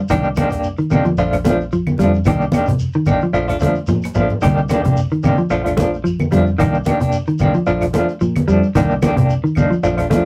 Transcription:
0.09 C2 D#3 A#3 D4 G4, cajon bass, low conga, claves, shekere
0.23 cajon slap, shekere
0.35 D#3 A#3 D4 G4, cajon bass, cajon slap, high conga, claves, shekere
0.50 A#3 D4 G4, cajon bass, shekere
0.63 cajon slap, shekere
0.78 D#3, cajon slap, shekere
0.90 C3 D#3 A#3 D4 G4, high conga, low conga, claves, shekere
1.05 F3, high conga, shekere
1.17 A#1 F3 A3 D4 F4, cajon slap, shekere
1.33 cajon bass, claves, shekere
1.45 F3 A3 D4 F4, cajon bass, cajon slap, high conga, shekere
1.61 shekere
1.72 F3, cajon slap, shekere
1.87 high conga, claves, shekere
1.98 F2 F3 G3 A3 D4 F4, cajon bass, high conga, shekere
2.14 shekere
2.25 C2 D#3 A#3 D4 G4, cajon bass, low conga, claves, shekere
2.41 cajon slap, shekere
2.52 D#3 A#3 D4 G4, cajon bass, high conga, claves, shekere
2.66 C3, cajon bass, cajon slap, low conga, shekere
2.79 cajon slap, shekere
2.93 D#3, cajon slap, shekere
3.06 A#1 D#3 A#3 D4 G4, cajon slap, high conga, low conga, claves, shekere
3.21 F3, cajon slap, shekere
3.33 A#1 F3 A3 D4 F4, cajon slap, shekere
3.48 A3 D4 F4, cajon bass, claves, shekere
3.60 F3 A3 D4 F4, cajon bass, cajon slap, high conga, shekere
3.75 cajon slap, shekere
3.87 A#2 F3, cajon slap, low conga, shekere
4.02 cajon slap, claves, shekere
4.14 A#1 F3 A3 D4 F4, muted clean electric guitar stroke, low conga, shekere
4.29 low conga, shekere
4.41 C2 D3 D#3 A#3 D4 G4, cajon bass, low conga, claves, shekere
4.57 cajon slap, shekere
4.69 D#3 A#3 D4 G4, cajon bass, cajon slap, high conga, claves, shekere
4.84 C3 A#3 D4 G4, cajon bass, cajon slap, low conga, shekere
4.97 cajon slap, shekere
5.11 D#3, cajon slap, shekere
5.23 C3 D#3 A#3 D4 G4, high conga, low conga, claves, shekere
5.38 F3, shekere
5.50 A#1 F3 A3 D4 F4, cajon slap, shekere
5.64 A3 D4 F4, cajon bass, cajon slap, claves, shekere
5.77 F3 A3 D4 F4, muted clean electric guitar stroke, cajon bass, cajon slap, high conga, shekere
5.94 cajon slap, shekere
6.04 F3, cajon slap, shekere
6.19 high conga, claves, shekere
6.31 F2 F3 G3 A3 D4 F4, cajon bass, high conga, shekere
6.47 shekere
6.58 C2 D#3 A#3 D4 G4, cajon bass, low conga, claves, shekere
6.74 shekere
6.85 D#3 A#3 D4 G4, cajon bass, high conga, claves, shekere
7.00 C3 A#3 D4 G4, cajon bass, shekere
7.12 cajon slap, shekere
7.27 D#3, cajon slap, shekere
7.39 C2 D#3 A#3 D4 G4, cajon slap, high conga, low conga, claves, shekere
7.54 F3, cajon slap, shekere
7.66 A#1 F3 A3 D4 F4, cajon slap, shekere
7.81 cajon bass, claves, shekere
7.93 F3 A3 D4 F4, cajon bass, cajon slap, high conga, shekere
8.09 cajon slap, shekere
8.21 A#2 F3, cajon slap, shekere
8.36 cajon slap, high conga, claves, shekere
8.48 F2 F3 G3 A3 D4, shekere
8.63 shekere
8.75 C2 D#3 A#3 D4 G4, cajon bass, low conga, claves, shekere
8.91 cajon slap, shekere
9.02 D#3 A#3 D4 G4, cajon bass, cajon slap, high conga, claves, shekere
9.17 C3 A#3 D4 G4, cajon bass, low conga, shekere
9.30 cajon slap, shekere
9.44 D#3, shekere
9.55 C2 D#3 A#3 D4, muted clean electric guitar stroke, high conga, low conga, claves, shekere
9.70 F3, shekere
9.83 A#1 F3 A3 D4 F4, cajon slap, shekere
9.97 A3 D4 F4, cajon bass, claves, shekere
10.10 F3 A3 D4 F4, cajon bass, cajon slap, high conga, shekere

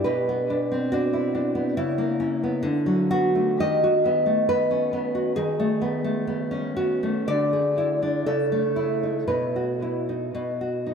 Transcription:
0.04 B2 B4
0.29 B3
0.50 D4
0.72 C4
0.92 D4 F#4
1.13 E4
1.35 D4
1.55 B3
1.77 C#3 E4
1.98 A#3
2.20 C#4
2.44 B3
2.63 D3
2.86 F#3
3.11 B3 F#4
3.35 A3
3.60 D#3 D#5
3.84 F#4
4.05 B3
4.26 A3
4.49 B3 B4
4.71 C#4
4.93 B3
5.15 F#4
5.36 D#3 G#4
5.60 A3
5.82 B3
6.04 A3
6.27 B3
6.51 C#4
6.76 B3 F#4
7.03 A3
7.28 D3 D5
7.53 G#4
7.78 E4
8.02 D4
8.26 C#3 A4
8.52 A3
8.76 E4
9.03 D#4
9.28 B2 B4
9.56 F#4
9.82 E4
10.09 D#4
10.35 B2
10.61 F#4
10.87 D#4

